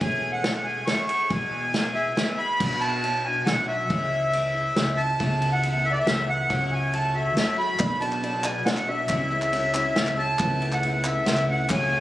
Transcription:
0.01 E1 E3 A3 C#4 G#4 G#5, kick, ride
0.32 F#5
0.44 E3 A3 C#4 G#4, snare, ride
0.64 C#4 G#4 G#5
0.69 A3
0.86 E3 A3 C#4 G#4 C#6, snare, ride
1.09 A3 C#4 G#4, ride
1.30 E1 E2 B2 E3 G#3 B3 G#4 G#5, kick, ride
1.73 E3 G#3 B3 G#4, snare, ride
1.94 E3 G#3 B3 G#4 E5
2.17 E3 G#3 B3 G#4 E5, snare, ride
2.38 E3 G#3 B3 G#4 B5
2.60 B1 B2 F#3 B3 D4 F#4, kick, crash
2.81 A5, ride
3.03 F#3 B3 D4 F#4, ride
3.25 B3 D4 F#4 G#5
3.46 B1 F#3 B3 D4 F#4 F#5, snare, ride
3.68 B3 D4 F#4 E5
3.90 C#2 C#3 E3 G#3 C#4 E4, kick, ride
4.33 E3 G#3 C#4 E4, ride
4.54 G#3 C#4 E4
4.76 C#2 E3 G#3 C#4 E4, snare, ride
4.97 G#3 C#4 E4 A5
5.19 C#2 C#3 E3 A3 B3 E4, kick, ride
5.42 ride
5.52 F#5
5.62 E3 A3 B3 E4, ride
5.84 A3 B3 E4 E5
5.92 D5
5.99 E5
6.05 C#2 E3 A3 B3 E4, snare, ride
6.29 F#5
6.50 C#2 C#3 F#3 A3 C#4 F#4, kick, ride
6.72 G#5
6.93 F#3 A3 C#4 F#4 A5, ride
7.14 A3 C#4 F#4 E5
7.36 F#2 F#3 A3 C#4 F#4 E5, snare, ride
7.58 A3 C#4 F#4 B5
7.79 B1 B2 F#3 B3 D4 F#4 D5, kick, clap, ride
8.01 B3 D4 F#4 D5 A5, clap, ride
8.12 clap
8.22 F#3 B3 D4 F#4 D5, ride
8.44 B3 D4 F#4 D5 G#5, clap
8.65 B1 F#3 B3 D4 F#4 D5 F#5, snare, ride
8.77 clap
8.87 B3 D4 F#4 D5 E5
9.09 C#2 C#3 E3 G#3 C#4 E4 C#5, kick, clap, ride
9.31 G#3 C#4 E4 C#5, clap
9.42 clap
9.52 E3 G#3 C#4 E4 C#5, ride
9.74 G#3 C#4 E4 C#5, clap
9.95 C#2 E3 G#3 C#4 E4, snare, ride
10.07 clap
10.17 G#3 C#4 E4 C#5 A5
10.39 C#2 C#3 E3 A3 B3 C#4 E4 B4, kick, clap, ride
10.61 A3 C#4 E4 B4, clap, ride
10.72 F#5, clap
10.83 E3 A3 B3 C#4 E4 B4, ride
11.04 A3 C#4 E4 B4 E5, clap
11.26 C#2 E3 A3 B3 C#4 E4 B4, snare, ride
11.37 clap
11.48 A3 B3 C#4 E4 B4 F#5
11.69 C#2 C#3 F#3 A3 C#4 F#4 C#5 G#5, kick, clap, ride
11.92 A3 C#4 F#4 C#5

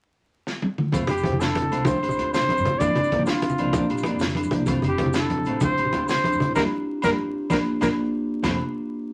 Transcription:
0.47 snare
0.62 high tom
0.78 mid tom
0.92 F1 A3 C4 F4, kick, closed hi-hat, high conga, low agogo, maracas
1.07 F1 G4, closed hi-hat, low conga, low agogo, maracas
1.17 maracas
1.22 A3 C4 F4, kick, high conga
1.26 F1 E4, closed hi-hat
1.32 low conga
1.40 D4 A4, snare, closed hi-hat, low agogo, maracas
1.55 C4, closed hi-hat, high conga
1.62 low conga
1.70 C2 A3 C4 F4, closed hi-hat, low agogo, maracas
1.85 D2 A3 C4 D4 F4 C5, kick, closed hi-hat, high conga, low conga, maracas
2.02 A1 G4, closed hi-hat, low agogo
2.09 low conga, maracas
2.17 D2 A3 F4, muted nylon-string guitar stroke, closed hi-hat, low agogo, maracas
2.33 D3 C5, snare, closed hi-hat, maracas
2.41 low conga, maracas
2.49 C4, closed hi-hat, high conga, low agogo
2.58 G2, maracas
2.64 A3 C4 E4 F4, closed hi-hat, low conga, maracas
2.73 D2, low conga
2.79 G1 F3 A#3 D4 F4 D5, kick, closed hi-hat, high conga, low agogo, maracas
2.95 G1, closed hi-hat, low conga, low agogo, maracas
3.04 maracas
3.11 G2 F3 A#3 D4 E4 F4, kick, closed hi-hat, high conga
3.19 low conga
3.26 D4 F4, snare, closed hi-hat, low agogo, maracas
3.42 C4, closed hi-hat, high conga
3.49 low conga, maracas
3.58 C2 F3 A#3 D4 F4, closed hi-hat, low agogo, maracas
3.73 A#1 F3 A#3 D4, kick, closed hi-hat, high conga, low conga, maracas
3.77 muted nylon-string guitar stroke
3.90 A#2 G4, closed hi-hat, low agogo
3.97 maracas
4.03 F3 A#3 F4, closed hi-hat, high conga, low agogo, maracas
4.08 D4 F4
4.14 F2
4.19 snare, closed hi-hat, maracas
4.27 low conga, maracas
4.35 D4, closed hi-hat, high conga, low agogo
4.43 A#1, maracas
4.51 C2 F3 A#3 D4 E4, closed hi-hat, low conga, maracas
4.59 low conga
4.66 F1 A3 C4, kick, closed hi-hat, high conga, low agogo, maracas
4.70 F4
4.82 F1, closed hi-hat, low conga, low agogo, maracas
4.88 G4
4.98 F1 A3 C4 E4 F4, kick, closed hi-hat, high conga
5.06 low conga
5.13 D4, snare, closed hi-hat, low agogo, maracas
5.19 A4
5.30 C4, closed hi-hat, high conga
5.38 low conga
5.45 A1 A3 C4 F4, closed hi-hat, low agogo, maracas
5.60 D2 A3 C4 D4 F4 C5, kick, closed hi-hat, high conga, low conga, maracas
5.78 A1 G4, closed hi-hat, low agogo
5.85 low conga
5.92 D2 A3 C4 F4, closed hi-hat, high conga, low agogo, maracas
6.08 D3 C5, snare, closed hi-hat, maracas
6.16 low conga, maracas
6.24 D4, closed hi-hat, high conga, low agogo
6.32 G2, maracas
6.38 A3 C4, muted nylon-string guitar stroke, closed hi-hat, low conga, maracas
6.43 E4
6.48 A1, low conga
6.55 G1 G3 A#3 D4 F4 G4 A#4, kick, snare, high conga, low agogo, maracas
7.02 G1 G3 A#3 D4 F4 G4 A#4, kick, snare, high conga, low agogo, maracas
7.50 A#1 F3 A#3 D4 F4 A#4, kick, snare, high conga, low agogo, maracas
7.80 A#1 F3 A#3 D4 F4 A#4, kick, snare, high conga, low agogo, maracas
8.43 F1 F3 A3 C4 F4, kick, snare, crash, high conga, low agogo, maracas

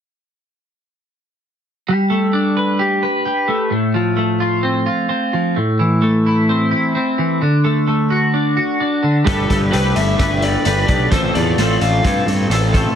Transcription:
1.89 G3
2.10 A3
2.33 D4
2.57 B4
2.79 G4
3.03 B4
3.25 G4
3.48 A3
3.70 A2
3.94 F3
4.17 A3
4.40 F4
4.63 C4
4.86 F4
5.09 C4
5.33 F3
5.56 A2
5.79 E3
6.02 A3
6.26 E4
6.49 C4
6.71 E4
6.95 C4
7.18 E3
7.42 D3
7.65 A3
7.87 A3
8.10 F#4
8.34 D4
8.57 F#4
8.80 D4
9.03 D3
9.25 G1 G3 A3 D4 G4 B4, kick, closed hi-hat
9.29 A4
9.50 G1 A4, kick, closed hi-hat
9.71 C2 G3 A3 D4 G4 B4, closed hi-hat
9.94 G1 D4 G4 B4 E5, closed hi-hat
10.18 G1 A3 D4 G4 B4, kick, closed hi-hat
10.42 D5, closed hi-hat
10.65 G1 A3 D4 G4 B4, closed hi-hat
10.86 B1 D4 G4 B4 D5, kick, closed hi-hat
11.11 A1 A2 F3 A3 C4 F4 A4 C5, kick, closed hi-hat
11.35 E2 D5, closed hi-hat
11.58 A1 A2 F3 A3 C4 F4 A4, closed hi-hat
11.80 A1 A3 C4 F4 A4 F5, closed hi-hat
12.03 G2 A3 C4 F4 A4, kick, closed hi-hat
12.27 G2, closed hi-hat
12.50 A1 A3 C4 F4 A4, closed hi-hat
12.72 A3 C4 F4 A4, kick, closed hi-hat

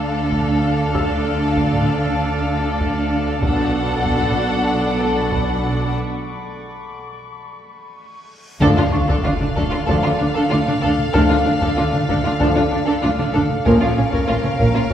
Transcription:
Already playing: D2 D3 D4 A4 D5 F5
0.32 taiko
0.95 E6, taiko
1.57 taiko
1.73 taiko low-mid
2.81 taiko
3.42 B1 B2 D4 A4 D5 F#5 B5 C#6, taiko
4.05 taiko
4.22 taiko low-mid
4.68 D6
5.00 A4 A5
5.32 taiko
5.97 reverse cymbal
7.36 C#6
8.61 D2 D3 F3 A3 D4 A4 D5 F5, taiko, sub drop
8.77 D3 D4 F4
8.92 D2 D3 D4 C#6
9.08 D3 D4 A4, taiko
9.24 D2 D3 D4 F4
9.40 D3 D4, taiko mid
9.55 D2 D3 D4 A4, taiko
9.71 D3 D4 F4, taiko rim
9.86 D2 D3 F3 A3 D4 A4, taiko
10.03 D3 D4 F4, taiko rim
10.18 D2 D3 D4
10.33 D3 D4 A4
10.50 D2 D3 D4 F4
10.66 D3 D4, taiko mid
10.82 D2 D3 D4 A4
10.99 taiko mid
11.13 D2 D3 F3 A3 D4 A4 F6, taiko
11.29 D3 D4 F4
11.45 D2 D3 D4
11.61 D3 D4 A4, taiko
11.76 D2 D3 D4 F4
11.91 D3 D4, taiko mid
12.08 D2 D3 D4 A4, taiko
12.24 D3 D4 F4
12.40 D2 D3 F3 A3 D4 A4, taiko
12.56 D3 D4 F4
12.71 D2 D3 D4
12.86 D3 D4 A4
13.02 D2 D3 D4 F4
13.18 D3 D4, taiko mid
13.33 D2 D3 D4 A4
13.50 taiko mid
13.62 A#2 A#3 C#4 A#4 C#5 F5 D7, taiko
13.66 A#1 A#2 F3 A#4 F5
13.80 A#2 C#4 F4
13.97 A#1 A#2 C#4
14.12 A#2 C#4 A#4, taiko
14.28 A#1 A#2 C#4 F4
14.43 A#2 C#4, taiko mid
14.59 A#1 A#2 C#4 A#4, taiko
14.75 A#2 C#4 F4
14.90 C#4

